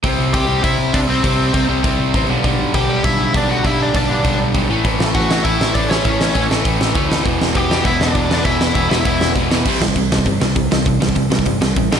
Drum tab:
CC |----------------|----------------|----------------|----------------|
HH |o---o---o---o---|o---o---o---o---|o---o---o---o---|o---o---o---o---|
SD |----------------|----------------|----------------|----------------|
BD |o---o---o---o---|o---o---o---o---|o---o---o---o---|o---o---o---o---|

CC |----------------|----------------|----------------|----------------|
HH |o---o---o---o---|o---o---o---o---|o---o---o---o---|o---o---o---o---|
SD |--o---o---o---o-|--o---o---o---o-|--o---o---o---o-|--o---o---o---o-|
BD |o---o---o---o---|o---o---o---o---|o---o---o---o---|o---o---o---o---|

CC |x---------------|----------------|
HH |----o---o---o---|o---o---o---o---|
SD |--o---o---o---o-|--o---o---o---o-|
BD |o--oo--oo---o---|o--oo--oo---o---|